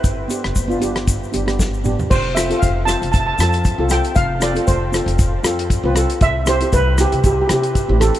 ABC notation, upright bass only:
X:1
M:4/4
L:1/16
Q:"Swing 16ths" 1/4=117
K:Flyd
V:1 name="Upright bass" clef=bass
G,,,2 z F,,, G,,,2 G,,,4 G,,,6 | F,,,4 F,,,3 F,,,3 F,,3 C,,2 z | F,,,4 F,,,3 F,,,3 F,,3 C,,2 z | C,,4 C,,3 C,,3 C,3 A,,,2 z |]